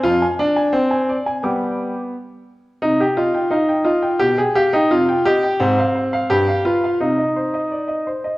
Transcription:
\new Staff \with { instrumentName = "Grand piano" } { \time 2/4 \key c \minor \tempo 4 = 86 << { f,16 aes''16 d''16 aes''16 g''16 aes''16 d''16 aes''16 | <g g'' d'''>4 r4 | c16 g''16 ees''16 g''16 f''16 g''16 ees''16 g''16 | b,16 g''16 f''16 g''16 c16 g''16 ees''16 g''16 |
aes,16 f''16 c''16 f''16 g,16 f''16 b'16 f''16 | c16 ees''16 c''16 ees''16 d''16 ees''16 c''16 ees''16 | } \\ { f'8 d'8 c'4 | b4 r4 | ees'16 g'16 f'8 ees'8 f'8 | g'16 aes'16 g'16 ees'16 f'8 g'8 |
c'4 g'8 f'8 | ees'4. r8 | } >> }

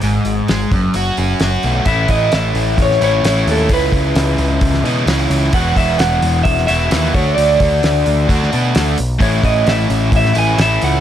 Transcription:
<<
  \new Staff \with { instrumentName = "Clean electric guitar" } { \time 4/4 \key a \lydian \tempo 4 = 131 r1 | e''8 dis''8 e''4 cis''8 cis''4 a'8 | b'2. r4 | fis''8 e''8 fis''4 e''8 e''4 cis''8 |
d''2. r4 | cis''8 dis''8 e''4 e''8 gis''8 e''8 fis''8 | }
  \new Staff \with { instrumentName = "Overdriven electric guitar" } { \time 4/4 \key a \lydian gis,4 gis8 fis,8 fis'8 cis'8 fis'8 a8 | <a, e a cis' e'>2~ <a, e a cis' e'>8 <a, e a cis' e'>8 <a, e a cis' e'>4 | <cis e gis cis' e'>2~ <cis e gis cis' e'>8 <cis e gis cis' e'>8 <cis e gis cis' e'>4 | <e, b, e b e' fis'>2~ <e, b, e b e' fis'>8 <e, b, e b e' fis'>8 <e, b, e b e' fis'>8 <d a d' fis'>8~ |
<d a d' fis'>2 <d a d' fis'>8 <d a d' fis'>4 r8 | <a, e a cis' e'>2~ <a, e a cis' e'>8 <a, e a cis' e'>8 <a, e a cis' e'>4 | }
  \new Staff \with { instrumentName = "Picked electric bass" } { \clef bass \time 4/4 \key a \lydian gis,,8 gis,,8 gis,,8 fis,,8 fis,,8 fis,,8 fis,,8 b,,8 | a,,8 a,,8 a,,8 a,,8 a,,8 a,,8 a,,8 dis,8 | cis,8 cis,8 cis,8 cis,8 cis,8 b,8 cis,8 cis,8 | e,,8 e,,8 e,,8 e,,8 e,,8 e,,8 dis,8 d,8 |
d,8 d,8 d,8 d,8 d,8 b,8 d,8 b,,8 | a,,8 a,,8 a,,8 a,,8 a,,8 a,,8 a,,8 cis,8 | }
  \new DrumStaff \with { instrumentName = "Drums" } \drummode { \time 4/4 hho8 hho8 <hho sn>8 <hho bd>8 hho8 hho8 <hho sn>8 hho8 | <hho bd>8 <hho bd>8 <hho sn>8 hho8 <hho bd>16 sn16 hho8 <hho sn>8 hho8 | <hho bd>8 <hho bd>8 <hho sn>8 hho8 <hho bd>16 sn16 hho8 <hho sn>8 hho8 | <hho bd>8 <hho bd>8 <hho sn>8 hho8 <hho bd>16 sn16 hho8 <hho sn>8 <hho bd>8 |
hho8 <hho bd>8 <hho sn>8 hho8 <hho bd>16 sn16 hho8 <hho sn>8 hho8 | <hho bd>8 <hho bd>8 <hho sn>8 hho8 <hho bd>16 sn16 hho8 <hho sn>8 hho8 | }
>>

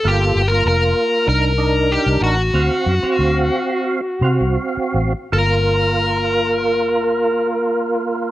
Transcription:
<<
  \new Staff \with { instrumentName = "Lead electric guitar" } { \time 4/4 \key g \minor \tempo 4 = 87 \tuplet 3/2 { g'4 bes'8 } bes'4 bes'4 g'8 fis'8~ | fis'2. r4 | bes'1 | }
  \new Staff \with { instrumentName = "Tonewheel organ" } { \time 4/4 \key g \minor <bes f' a'>8 r16 <bes f' bes'>4~ <bes f' bes'>16 <d' ees' bes'>8 <d' ees' bes'>4~ <d' ees' bes'>16 r16 | <c' fis' eis''>8 r16 <c' fis' eis''>4. r16 <c' fis' eis''>4~ <c' fis' eis''>16 r16 | <bes f' bes'>1 | }
  \new Staff \with { instrumentName = "Fingered electric bass" } { \clef bass \time 4/4 \key g \minor g,,8 g,,8 f,,8 r8 c,4~ c,16 c,16 a,,8 | d,16 r16 fis,16 r16 d,8 r4 c16 c,16 r8 a,,16 r16 | g,,1 | }
>>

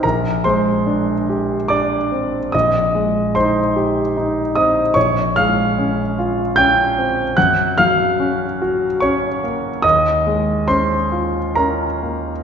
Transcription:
\new Staff \with { instrumentName = "Grand piano" } { \time 3/4 \key bes \dorian \tempo 4 = 73 << { <bes' bes''>8 <c'' c'''>4. <d'' d'''>4 | <ees'' ees'''>4 <c'' c'''>4. <ees'' ees'''>8 | <des'' des'''>8 <f'' f'''>4. <g'' g'''>4 | <ges'' ges'''>8 <f'' f'''>4. <des'' des'''>8 r8 |
<ees'' ees'''>4 <c'' c'''>4 <bes' bes''>4 | } \\ { bes,,8 aes8 d'8 g'8 d'8 c'8 | bes,,8 aes8 ees'8 g'8 ees'8 c'8 | bes,,8 aes8 des'8 f'8 des'8 c'8 | ges,8 ges8 des'8 ges'8 des'8 bes8 |
ees,8 aes8 des'8 f'8 des'8 bes8 | } >> }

